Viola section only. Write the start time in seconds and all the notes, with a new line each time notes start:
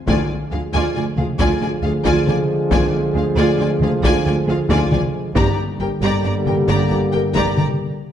0.08 F4
0.53 F4
0.74 F4
0.96 F4
1.18 F4
1.40 F4
1.62 F4
1.84 F4
2.05 F4
2.28 F4
2.73 F4
3.15 F4
3.38 F4
3.60 F4
3.82 F4
4.04 F4
4.26 F4
4.49 F4
4.71 F4
4.93 F4
5.36 G4
5.80 G4
6.02 G4
6.25 G4
6.46 G4
6.68 G4
6.91 G4
7.13 G4
7.36 G4
7.58 G4